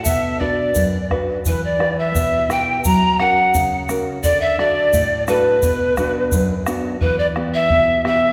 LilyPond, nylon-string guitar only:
\new Staff \with { instrumentName = "Nylon-string guitar" } { \time 2/4 \key b \minor \tempo 4 = 86 b,8 <d' fis' b'>8 fis,8 <d' fis' b'>8 | e8 <e' g' b'>8 b,8 <e' g' b'>8 | fis8 <cis' fis' ais'>8 cis8 <cis' fis' ais'>8 | d8 <d' fis' a'>8 a,8 <d' fis' a'>8 |
b,8 <b d' fis'>8 fis,8 <b d' fis'>8 | e8 <b e' g'>8 b,8 <b e' g'>8 | }